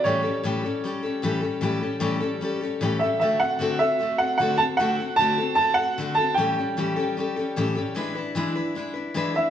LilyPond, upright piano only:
\new Staff \with { instrumentName = "Upright piano" } { \time 4/4 \key a \mixolydian \tempo 4 = 152 cis''2. r4 | r2. r8 e''8 | e''8 fis''4 e''4 fis''8 fis''8 a''8 | fis''4 a''4 a''8 fis''4 a''8 |
g''2. r4 | r2. r8 e''8 | }